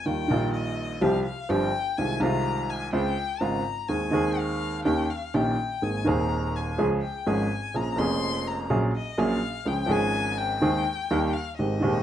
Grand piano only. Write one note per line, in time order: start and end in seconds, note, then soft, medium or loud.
0.06 0.26 D#2 soft
0.06 0.26 D#3 medium
0.06 0.26 G3 soft
0.06 0.26 A#3 soft
0.06 0.26 F4 soft
0.28 0.99 A#1 medium
0.28 0.99 A#2 medium
0.28 0.97 D#3 medium
0.28 0.98 G3 medium
0.28 0.99 A#3 medium
0.32 0.99 F4 medium
1.01 1.22 C2 medium
1.01 1.22 C3 medium
1.01 1.22 F3 medium
1.01 1.22 G3 medium
1.01 1.22 C4 medium
1.01 1.22 G4 medium
1.49 1.70 G1 medium
1.49 1.70 G2 medium
1.49 1.70 F3 medium
1.49 1.70 G3 medium
1.49 1.70 C4 medium
1.49 1.70 G4 medium
1.98 2.18 C2 medium
1.98 2.18 C3 medium
1.98 2.18 D#3 soft
1.98 2.18 G#3 soft
1.98 2.18 C4 soft
1.98 2.18 F4 medium
2.20 2.90 C2 medium
2.20 2.90 C3 medium
2.20 2.89 D#3 medium
2.20 2.90 G#3 medium
2.20 2.90 C4 medium
2.24 2.91 F4 medium
2.93 3.13 C#2 medium
2.93 3.13 C#3 medium
2.93 3.13 G#3 medium
2.93 3.13 C4 medium
2.93 3.13 F4 medium
3.40 3.61 G#1 medium
3.40 3.61 G#2 medium
3.40 3.61 C#3 medium
3.40 3.61 G#3 medium
3.40 3.61 C4 medium
3.40 3.61 F4 medium
3.89 4.09 D#2 medium
3.89 4.09 D#3 medium
3.89 4.09 G#3 soft
3.89 4.09 C4 soft
3.89 4.09 G#4 soft
4.11 4.81 D#2 medium
4.11 4.81 D#3 medium
4.11 4.81 G#3 medium
4.11 4.82 C4 medium
4.11 4.82 G#4 medium
4.85 5.05 D#2 medium
4.85 5.05 D#3 medium
4.85 5.05 A#3 medium
4.85 5.05 C#4 medium
4.85 5.05 G4 medium
5.34 5.54 A#1 medium
5.34 5.54 A#2 medium
5.34 5.54 D#3 medium
5.34 5.54 A#3 medium
5.34 5.54 C#4 medium
5.34 5.54 G4 medium
5.82 6.02 G#1 soft
5.82 6.02 G#2 soft
5.82 6.02 D#3 soft
5.82 6.02 A#3 soft
5.82 6.02 C4 soft
5.82 6.02 G#4 soft
6.05 6.75 D#1 medium
6.05 6.75 D#2 medium
6.05 6.74 D#3 medium
6.05 6.75 A#3 medium
6.05 6.75 C4 medium
6.05 6.76 G#4 medium
6.78 6.99 C#2 medium
6.78 6.99 C#3 medium
6.78 6.99 F3 medium
6.78 6.99 G#3 medium
6.78 6.99 C#4 medium
6.78 6.99 G#4 medium
7.27 7.47 G#1 medium
7.27 7.47 G#2 medium
7.27 7.47 F3 medium
7.27 7.47 G#3 medium
7.27 7.47 C#4 medium
7.27 7.47 G#4 medium
7.74 7.95 A#1 medium
7.74 7.95 A#2 medium
7.74 7.95 F3 soft
7.74 7.95 A#3 soft
7.74 7.95 C#4 soft
7.74 7.95 G#4 soft
7.96 8.67 F1 medium
7.96 8.67 F2 medium
7.96 8.65 F3 medium
7.96 8.66 A#3 medium
7.96 8.67 C#4 medium
8.00 8.68 G#4 medium
8.70 8.90 A#1 medium
8.70 8.90 A#2 medium
8.70 8.90 F#3 medium
8.70 8.90 A#3 medium
8.70 8.90 C#4 medium
8.70 8.90 G#4 medium
9.18 9.38 A#1 medium
9.18 9.38 A#2 medium
9.18 9.38 F#3 medium
9.18 9.38 A#3 medium
9.18 9.38 C#4 medium
9.18 9.38 G#4 medium
9.65 9.86 C#2 medium
9.65 9.86 C#3 soft
9.65 9.85 F3 soft
9.65 9.86 G#3 soft
9.65 9.86 C#4 soft
9.65 9.86 G#4 soft
9.86 10.58 G#1 medium
9.86 10.58 G#2 medium
9.86 10.56 F3 medium
9.86 10.57 G#3 medium
9.86 10.58 C#4 medium
9.90 10.58 G#4 medium
10.62 10.82 D#2 medium
10.62 10.82 D#3 medium
10.62 10.82 G#3 medium
10.62 10.82 C4 medium
10.62 10.82 G#4 medium
11.11 11.30 D#2 medium
11.11 11.31 D#3 medium
11.11 11.30 G3 medium
11.11 11.30 A#3 medium
11.11 11.31 G4 medium
11.59 11.79 G#1 medium
11.59 11.79 G#2 medium
11.59 11.79 D#3 soft
11.59 11.79 G#3 soft
11.59 11.79 C4 soft
11.59 11.79 G4 medium
11.80 12.03 D#1 medium
11.80 12.03 D#2 medium
11.80 12.03 D#3 medium
11.80 12.03 G#3 medium
11.80 12.03 C4 medium
11.80 12.03 G4 medium